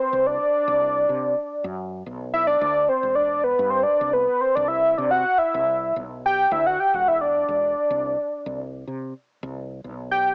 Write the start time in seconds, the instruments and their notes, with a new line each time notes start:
Already playing: analog synth lead C5
0.13 fretless electric bass C2
0.26 analog synth lead D5
0.68 fretless electric bass C2
1.09 fretless electric bass C3
1.64 fretless electric bass F#2
2.06 fretless electric bass B1
2.33 analog synth lead E5
2.47 analog synth lead D5
2.61 fretless electric bass D2
2.89 analog synth lead C5
3.03 fretless electric bass E1
3.15 analog synth lead D5
3.44 analog synth lead B4
3.59 fretless electric bass G2
3.70 analog synth lead C5
3.83 analog synth lead D5
4.01 fretless electric bass C2
4.13 analog synth lead B4
4.41 analog synth lead C5
4.55 fretless electric bass C2, analog synth lead D5
4.68 analog synth lead E5
4.98 fretless electric bass C3, analog synth lead D5
5.11 analog synth lead F#5
5.38 analog synth lead E5
5.54 fretless electric bass C2
5.96 fretless electric bass B1
6.26 analog synth lead G5
6.51 fretless electric bass D2, analog synth lead E5
6.66 analog synth lead F#5
6.80 analog synth lead G5
6.94 fretless electric bass E1, analog synth lead F#5
7.08 analog synth lead E5
7.21 analog synth lead D5
7.48 fretless electric bass E1
7.90 fretless electric bass C2
8.46 fretless electric bass C2
8.87 fretless electric bass C3
9.43 fretless electric bass C2
9.84 fretless electric bass B1
10.12 analog synth lead G5